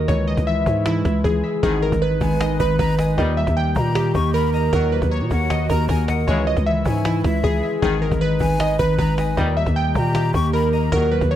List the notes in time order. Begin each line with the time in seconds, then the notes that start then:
Already playing: D#3 A#3 D#4 D#5
0.08 C#2 C#3 E3 G#3 E4 C#5, cajon bass
0.27 G#3 D#5
0.37 C#2, cajon bass, cajon slap
0.47 E3 E5, cajon slap
0.66 G#2 C#4, cajon bass
0.86 E3 E4, cajon slap
1.05 C#2 E4, cajon bass, cajon slap
1.24 C#2 E3 G#4, cajon bass
1.44 E5, cajon slap
1.50 cajon slap
1.57 cajon slap
1.63 G#1 G#2 B2 D#3 G#3 D#4 G#4 B4, cajon bass
1.82 G#3 A#4
1.92 G#1, cajon bass
2.02 D#3 B4
2.21 G#1 B3 G#5, cajon bass
2.28 cajon slap
2.34 cajon slap
2.40 D#3 D#5, cajon slap
2.53 cajon slap
2.60 G#1 D#4 B4 B5, cajon bass
2.79 G#1 D#3 B4 A#5, cajon bass
2.98 D#5 G#5, cajon slap
3.18 D#2 A#2 D#3 G3 A#3 G4 D#5, cajon bass
3.37 G3 E5, cajon slap
3.47 D#2, cajon bass, cajon slap
3.56 D#3 G5, cajon slap
3.76 A#2 A#3 A#5, cajon bass
3.81 cajon slap
3.91 cajon slap
3.95 D#3 G4, cajon slap
4.15 D#2 D#4 C#6, cajon bass
4.34 D#3 A#4 B5
4.53 D#5 A#5
4.66 cajon slap
4.73 D#2 A#2 D#3 F#3 F#4 A#4, cajon bass
4.92 F#3 B4, cajon slap
5.02 D#2, cajon bass
5.11 D#3 C#5
5.21 A#2
5.31 D#2 A#3 F#5, cajon bass
5.44 cajon slap
5.50 D#3 D#5, cajon slap
5.63 cajon slap
5.69 D#2 D#4 A#4 A#5, cajon bass
5.89 D#2 D#3 A#4 G#5, cajon bass
6.08 D#5 F#5, cajon slap
6.28 C#2 C#3 E3 G#3 E4 C#5, cajon bass
6.47 G#3 D#5
6.57 C#2, cajon bass, cajon slap
6.66 E3 E5
6.86 G#2 C#4 G#5, cajon bass
7.05 E3 E4, cajon slap
7.24 C#2 E4 E5, cajon bass, cajon slap
7.44 C#2 E3 G#4, cajon bass
7.63 E5, cajon slap
7.70 cajon slap
7.76 cajon slap
7.82 G#1 G#2 B2 D#3 D#4 G#4 B4, cajon bass
8.02 G#3 A#4
8.12 G#1, cajon bass
8.21 D#3 B4
8.40 G#1 B3 G#5, cajon bass
8.53 cajon slap
8.60 D#3 D#5, cajon slap
8.73 cajon slap
8.79 G#1 D#4 B4 B5, cajon bass
8.99 G#1 D#3 B4 A#5, cajon bass
9.18 D#5 G#5, cajon slap
9.37 D#2 A#2 D#3 G3 A#3 G4 D#5, cajon bass
9.56 G3 E5, cajon slap
9.66 D#2, cajon bass, cajon slap
9.76 D#3 G5
9.95 A#2 A#3 A#5, cajon bass
10.10 cajon slap
10.15 D#3 G4, cajon slap
10.34 D#2 D#4 C#6, cajon bass
10.53 D#3 A#4 B5
10.73 D#5 A#5
10.79 cajon slap
10.86 cajon slap
10.92 D#2 A#2 D#3 F#3 F#4 A#4, cajon bass
11.11 F#3 B4
11.21 D#2, cajon bass
11.31 D#3 C#5